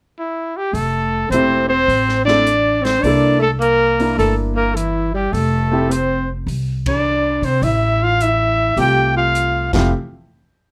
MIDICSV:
0, 0, Header, 1, 6, 480
1, 0, Start_track
1, 0, Key_signature, -1, "major"
1, 0, Tempo, 573066
1, 632, Time_signature, 4, 2, 24, 8
1, 8973, End_track
2, 0, Start_track
2, 0, Title_t, "Trumpet"
2, 0, Program_c, 0, 56
2, 157, Note_on_c, 0, 64, 75
2, 477, Note_on_c, 0, 67, 76
2, 489, Note_off_c, 0, 64, 0
2, 622, Note_on_c, 0, 69, 83
2, 635, Note_off_c, 0, 67, 0
2, 1092, Note_off_c, 0, 69, 0
2, 1098, Note_on_c, 0, 72, 86
2, 1401, Note_off_c, 0, 72, 0
2, 1414, Note_on_c, 0, 72, 91
2, 1869, Note_off_c, 0, 72, 0
2, 1886, Note_on_c, 0, 74, 99
2, 2382, Note_on_c, 0, 72, 85
2, 2395, Note_off_c, 0, 74, 0
2, 2541, Note_on_c, 0, 74, 90
2, 2554, Note_off_c, 0, 72, 0
2, 2858, Note_off_c, 0, 74, 0
2, 2863, Note_on_c, 0, 69, 79
2, 2938, Note_off_c, 0, 69, 0
2, 3024, Note_on_c, 0, 70, 88
2, 3476, Note_off_c, 0, 70, 0
2, 3509, Note_on_c, 0, 69, 75
2, 3643, Note_off_c, 0, 69, 0
2, 3827, Note_on_c, 0, 70, 83
2, 3986, Note_on_c, 0, 64, 74
2, 3999, Note_off_c, 0, 70, 0
2, 4309, Note_off_c, 0, 64, 0
2, 4317, Note_on_c, 0, 67, 76
2, 4466, Note_on_c, 0, 69, 86
2, 4478, Note_off_c, 0, 67, 0
2, 4956, Note_on_c, 0, 72, 74
2, 4969, Note_off_c, 0, 69, 0
2, 5275, Note_off_c, 0, 72, 0
2, 5760, Note_on_c, 0, 74, 89
2, 6236, Note_on_c, 0, 72, 75
2, 6249, Note_off_c, 0, 74, 0
2, 6394, Note_on_c, 0, 76, 83
2, 6407, Note_off_c, 0, 72, 0
2, 6728, Note_on_c, 0, 77, 84
2, 6741, Note_off_c, 0, 76, 0
2, 6884, Note_on_c, 0, 76, 86
2, 6897, Note_off_c, 0, 77, 0
2, 7359, Note_off_c, 0, 76, 0
2, 7374, Note_on_c, 0, 79, 87
2, 7661, Note_off_c, 0, 79, 0
2, 7681, Note_on_c, 0, 77, 85
2, 8123, Note_off_c, 0, 77, 0
2, 8156, Note_on_c, 0, 77, 70
2, 8304, Note_off_c, 0, 77, 0
2, 8973, End_track
3, 0, Start_track
3, 0, Title_t, "Grand piano"
3, 0, Program_c, 1, 0
3, 1111, Note_on_c, 1, 57, 58
3, 1117, Note_on_c, 1, 60, 54
3, 1124, Note_on_c, 1, 64, 51
3, 1129, Note_on_c, 1, 67, 64
3, 1399, Note_off_c, 1, 57, 0
3, 1401, Note_off_c, 1, 60, 0
3, 1405, Note_off_c, 1, 64, 0
3, 1407, Note_off_c, 1, 67, 0
3, 1904, Note_on_c, 1, 57, 63
3, 1913, Note_on_c, 1, 60, 57
3, 1917, Note_on_c, 1, 64, 55
3, 1923, Note_on_c, 1, 69, 62
3, 2053, Note_off_c, 1, 57, 0
3, 2057, Note_off_c, 1, 60, 0
3, 2059, Note_off_c, 1, 64, 0
3, 2062, Note_off_c, 1, 69, 0
3, 2551, Note_on_c, 1, 58, 64
3, 2558, Note_on_c, 1, 62, 58
3, 2560, Note_on_c, 1, 64, 56
3, 2569, Note_on_c, 1, 69, 70
3, 2839, Note_off_c, 1, 58, 0
3, 2843, Note_off_c, 1, 62, 0
3, 2844, Note_off_c, 1, 64, 0
3, 2848, Note_off_c, 1, 69, 0
3, 3346, Note_on_c, 1, 58, 55
3, 3351, Note_on_c, 1, 62, 47
3, 3360, Note_on_c, 1, 64, 51
3, 3364, Note_on_c, 1, 70, 59
3, 3959, Note_off_c, 1, 58, 0
3, 3961, Note_off_c, 1, 62, 0
3, 3966, Note_off_c, 1, 64, 0
3, 3968, Note_off_c, 1, 70, 0
3, 4787, Note_on_c, 1, 57, 61
3, 4792, Note_on_c, 1, 60, 54
3, 4800, Note_on_c, 1, 64, 58
3, 4804, Note_on_c, 1, 67, 69
3, 4935, Note_off_c, 1, 57, 0
3, 4938, Note_off_c, 1, 60, 0
3, 4942, Note_off_c, 1, 64, 0
3, 4944, Note_off_c, 1, 67, 0
3, 7353, Note_on_c, 1, 57, 54
3, 7361, Note_on_c, 1, 60, 48
3, 7368, Note_on_c, 1, 65, 48
3, 7373, Note_on_c, 1, 67, 59
3, 8088, Note_off_c, 1, 57, 0
3, 8092, Note_off_c, 1, 60, 0
3, 8095, Note_off_c, 1, 65, 0
3, 8098, Note_off_c, 1, 67, 0
3, 8156, Note_on_c, 1, 57, 60
3, 8158, Note_on_c, 1, 60, 55
3, 8162, Note_on_c, 1, 64, 56
3, 8165, Note_on_c, 1, 67, 68
3, 8299, Note_off_c, 1, 57, 0
3, 8300, Note_off_c, 1, 60, 0
3, 8302, Note_off_c, 1, 64, 0
3, 8303, Note_off_c, 1, 67, 0
3, 8973, End_track
4, 0, Start_track
4, 0, Title_t, "Tenor saxophone"
4, 0, Program_c, 2, 66
4, 609, Note_on_c, 2, 57, 72
4, 1074, Note_off_c, 2, 57, 0
4, 1079, Note_on_c, 2, 60, 67
4, 1391, Note_off_c, 2, 60, 0
4, 1412, Note_on_c, 2, 60, 77
4, 1868, Note_off_c, 2, 60, 0
4, 1885, Note_on_c, 2, 62, 81
4, 2358, Note_on_c, 2, 60, 75
4, 2371, Note_off_c, 2, 62, 0
4, 2513, Note_on_c, 2, 62, 82
4, 2526, Note_off_c, 2, 60, 0
4, 2835, Note_off_c, 2, 62, 0
4, 2840, Note_on_c, 2, 57, 66
4, 2919, Note_off_c, 2, 57, 0
4, 3012, Note_on_c, 2, 58, 74
4, 3470, Note_off_c, 2, 58, 0
4, 3500, Note_on_c, 2, 57, 68
4, 3634, Note_off_c, 2, 57, 0
4, 3811, Note_on_c, 2, 58, 71
4, 3979, Note_on_c, 2, 52, 62
4, 3991, Note_off_c, 2, 58, 0
4, 4299, Note_off_c, 2, 52, 0
4, 4304, Note_on_c, 2, 55, 68
4, 4462, Note_on_c, 2, 57, 72
4, 4474, Note_off_c, 2, 55, 0
4, 4940, Note_on_c, 2, 60, 66
4, 4953, Note_off_c, 2, 57, 0
4, 5267, Note_off_c, 2, 60, 0
4, 5757, Note_on_c, 2, 62, 72
4, 6248, Note_on_c, 2, 60, 68
4, 6261, Note_off_c, 2, 62, 0
4, 6400, Note_on_c, 2, 64, 76
4, 6412, Note_off_c, 2, 60, 0
4, 6727, Note_on_c, 2, 65, 74
4, 6740, Note_off_c, 2, 64, 0
4, 6897, Note_on_c, 2, 64, 70
4, 6909, Note_off_c, 2, 65, 0
4, 7341, Note_off_c, 2, 64, 0
4, 7346, Note_on_c, 2, 67, 81
4, 7646, Note_off_c, 2, 67, 0
4, 7677, Note_on_c, 2, 65, 69
4, 8121, Note_off_c, 2, 65, 0
4, 8150, Note_on_c, 2, 53, 67
4, 8301, Note_off_c, 2, 53, 0
4, 8973, End_track
5, 0, Start_track
5, 0, Title_t, "Upright bass"
5, 0, Program_c, 3, 32
5, 615, Note_on_c, 3, 29, 72
5, 1070, Note_off_c, 3, 29, 0
5, 1090, Note_on_c, 3, 28, 71
5, 1548, Note_off_c, 3, 28, 0
5, 1576, Note_on_c, 3, 33, 73
5, 2511, Note_off_c, 3, 33, 0
5, 2539, Note_on_c, 3, 36, 75
5, 3473, Note_off_c, 3, 36, 0
5, 3503, Note_on_c, 3, 31, 70
5, 4436, Note_off_c, 3, 31, 0
5, 4464, Note_on_c, 3, 29, 79
5, 5396, Note_off_c, 3, 29, 0
5, 5416, Note_on_c, 3, 36, 75
5, 6191, Note_off_c, 3, 36, 0
5, 6215, Note_on_c, 3, 48, 62
5, 6374, Note_off_c, 3, 48, 0
5, 6380, Note_on_c, 3, 33, 78
5, 7314, Note_off_c, 3, 33, 0
5, 7343, Note_on_c, 3, 36, 76
5, 8113, Note_off_c, 3, 36, 0
5, 8150, Note_on_c, 3, 29, 76
5, 8301, Note_off_c, 3, 29, 0
5, 8973, End_track
6, 0, Start_track
6, 0, Title_t, "Drums"
6, 626, Note_on_c, 9, 46, 39
6, 710, Note_off_c, 9, 46, 0
6, 1107, Note_on_c, 9, 42, 47
6, 1190, Note_off_c, 9, 42, 0
6, 1587, Note_on_c, 9, 46, 37
6, 1671, Note_off_c, 9, 46, 0
6, 1747, Note_on_c, 9, 38, 24
6, 1831, Note_off_c, 9, 38, 0
6, 1907, Note_on_c, 9, 38, 38
6, 1991, Note_off_c, 9, 38, 0
6, 2066, Note_on_c, 9, 42, 45
6, 2149, Note_off_c, 9, 42, 0
6, 2386, Note_on_c, 9, 46, 32
6, 2388, Note_on_c, 9, 38, 46
6, 2470, Note_off_c, 9, 46, 0
6, 2472, Note_off_c, 9, 38, 0
6, 2546, Note_on_c, 9, 46, 38
6, 2629, Note_off_c, 9, 46, 0
6, 3030, Note_on_c, 9, 42, 46
6, 3114, Note_off_c, 9, 42, 0
6, 3348, Note_on_c, 9, 46, 34
6, 3432, Note_off_c, 9, 46, 0
6, 3512, Note_on_c, 9, 46, 39
6, 3596, Note_off_c, 9, 46, 0
6, 3994, Note_on_c, 9, 42, 47
6, 4078, Note_off_c, 9, 42, 0
6, 4477, Note_on_c, 9, 46, 41
6, 4560, Note_off_c, 9, 46, 0
6, 4954, Note_on_c, 9, 42, 48
6, 5037, Note_off_c, 9, 42, 0
6, 5431, Note_on_c, 9, 46, 38
6, 5514, Note_off_c, 9, 46, 0
6, 5746, Note_on_c, 9, 51, 65
6, 5747, Note_on_c, 9, 36, 70
6, 5830, Note_off_c, 9, 51, 0
6, 5831, Note_off_c, 9, 36, 0
6, 6225, Note_on_c, 9, 46, 34
6, 6309, Note_off_c, 9, 46, 0
6, 6389, Note_on_c, 9, 46, 43
6, 6472, Note_off_c, 9, 46, 0
6, 6872, Note_on_c, 9, 42, 46
6, 6956, Note_off_c, 9, 42, 0
6, 7348, Note_on_c, 9, 46, 40
6, 7432, Note_off_c, 9, 46, 0
6, 7833, Note_on_c, 9, 42, 50
6, 7916, Note_off_c, 9, 42, 0
6, 8151, Note_on_c, 9, 38, 68
6, 8151, Note_on_c, 9, 49, 70
6, 8152, Note_on_c, 9, 36, 83
6, 8235, Note_off_c, 9, 36, 0
6, 8235, Note_off_c, 9, 38, 0
6, 8235, Note_off_c, 9, 49, 0
6, 8973, End_track
0, 0, End_of_file